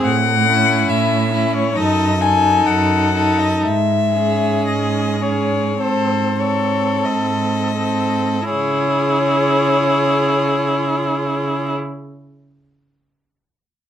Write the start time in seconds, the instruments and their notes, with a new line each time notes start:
0.03 cello A2, violin F#5
0.45 viola C#4, violin E4
0.88 cello A2, violin E5
1.32 viola C#4, violin E4
1.54 violin C#5
1.75 cello F#2, viola D#4, violin A4 D#5
2.21 viola D#4, violin A4 G#5
2.66 cello F#2, violin F#5
3.15 viola D#4, violin A4
3.38 violin D#5
3.63 cello G#2, violin E5
4.14 viola C#4, violin G#4
4.66 cello G#2, violin D#5
5.22 viola C#4, violin G#4 C#5
5.79 cello G#2, viola C4, violin A4 C5
6.40 viola C4, violin A4 C#5
7.05 cello G#2, violin D#5
7.78 viola C4, violin A4
8.49 cello C#3, viola E4, violin G#4 C#5